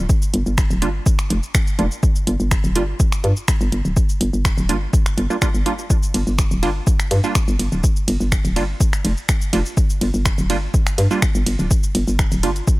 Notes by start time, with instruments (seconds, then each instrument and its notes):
0.09 kick, shaker
0.22 shaker
0.34 fm bass G1, closed hi-hat
0.46 fm bass G1, shaker
0.58 finger snap, kick, shaker
0.70 fm bass D1, shaker
0.82 fm bass G1, synth stab G3 A#3 D4 F4, closed hi-hat
1.06 kick, shaker
1.19 finger snap, shaker
1.30 fm bass F1, closed hi-hat
1.43 shaker
1.55 finger snap, kick, closed hi-hat, shaker
1.67 shaker
1.79 fm bass F1, synth stab G3 A#3 D4 F4, closed hi-hat
1.91 shaker
2.03 kick, shaker
2.16 shaker
2.27 fm bass G1, closed hi-hat
2.40 fm bass G1, shaker
2.51 finger snap, kick, shaker
2.64 fm bass D1, shaker
2.76 fm bass G1, synth stab G3 A#3 D4 F4, closed hi-hat
3.00 kick, shaker
3.12 finger snap, shaker
3.24 fm bass G2, closed hi-hat
3.37 shaker
3.48 finger snap, kick, closed hi-hat, shaker
3.61 fm bass G1, shaker
3.72 fm bass G1, closed hi-hat
3.85 fm bass D1, shaker
3.97 kick, shaker
4.09 shaker
4.21 fm bass G1, closed hi-hat
4.33 fm bass G1, shaker
4.45 finger snap, kick, shaker
4.58 fm bass D1, shaker
4.69 fm bass G1, synth stab G3 A#3 D4 F4, closed hi-hat
4.93 kick, shaker
5.06 finger snap, shaker
5.18 fm bass G1, closed hi-hat
5.30 synth stab G3 A#3 D4 F4, shaker
5.42 synth stab G3 A#3 D4 F4, finger snap, kick, closed hi-hat, shaker
5.54 fm bass G1, shaker
5.66 synth stab G3 A#3 D4 F4, closed hi-hat
5.79 shaker
5.90 kick, shaker
6.03 shaker
6.14 fm bass G1, closed hi-hat, ride
6.27 fm bass G1, shaker
6.39 finger snap, kick, shaker
6.51 fm bass D1, shaker
6.63 fm bass G1, synth stab G3 A#3 D4 F4, closed hi-hat, ride
6.87 kick, shaker
7.00 finger snap, shaker
7.11 fm bass G2, closed hi-hat, ride
7.24 synth stab G3 A#3 D4 F4, shaker
7.35 finger snap, kick, closed hi-hat, shaker
7.48 fm bass G1, shaker
7.59 fm bass G1, closed hi-hat, ride
7.72 fm bass D1, shaker
7.84 kick, shaker
7.96 shaker
8.08 fm bass G1, closed hi-hat, ride
8.20 fm bass G1, shaker
8.32 finger snap, kick, shaker
8.45 fm bass D1, ride, shaker
8.56 fm bass G1, synth stab G3 A#3 D4 F4, closed hi-hat, ride
8.80 kick, shaker
8.93 finger snap, shaker
9.05 fm bass F1, closed hi-hat, ride
9.17 shaker
9.29 finger snap, kick, closed hi-hat, shaker
9.41 shaker
9.53 fm bass F1, synth stab G3 A#3 D4 F4, closed hi-hat, ride
9.66 shaker
9.77 kick, shaker
9.90 shaker
10.01 fm bass G1, closed hi-hat, ride
10.14 fm bass G1, shaker
10.26 finger snap, kick, shaker
10.38 fm bass D1, shaker
10.50 fm bass G1, synth stab G3 A#3 D4 F4, closed hi-hat, ride
10.74 kick, shaker
10.87 finger snap, shaker
10.98 fm bass G2, closed hi-hat, ride
11.11 synth stab G3 A#3 D4 F4, shaker
11.22 finger snap, kick, closed hi-hat, shaker
11.35 fm bass G1, shaker
11.46 fm bass G1, closed hi-hat, ride
11.59 fm bass D1, shaker
11.71 kick, shaker
11.83 shaker
11.95 fm bass G1, closed hi-hat, ride
12.08 fm bass G1, shaker
12.19 finger snap, kick, shaker
12.32 fm bass D1, ride, shaker
12.43 fm bass G1, synth stab G3 A#3 D4 F4, closed hi-hat, ride
12.56 closed hi-hat, shaker
12.68 kick, shaker